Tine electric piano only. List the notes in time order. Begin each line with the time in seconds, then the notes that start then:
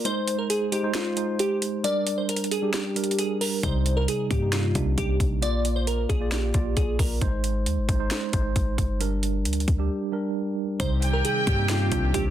0.05 G#3 D#4 C5
0.72 G#3 D#4 C5
0.83 G#3 D#4 C5
1.16 G#3 D#4 C5
1.84 G3 D4 A#4
2.62 G3 D4 G4
2.96 G3 D4 A#4
3.63 C3 G3 D#4
4.30 C3 G3 A#3
4.41 C3 G3 D#4
4.75 C3 G3 D4
5.42 A#3 F4 D5
6.20 A#3 F4 D5
6.54 A#3 F4 D5
7.21 G#3 D#4 C5
7.88 G#3 D#4 C5
7.99 G#3 D#4 C5
8.33 G#3 D#4 C5
9.00 G3 D4 A#4
9.78 G3 D4 G4
10.12 G3 D4 A#4
10.79 C3 G3 D#4
11.46 C3 G3 A#3
11.58 C3 G3 D#4
11.91 C3 G3 D4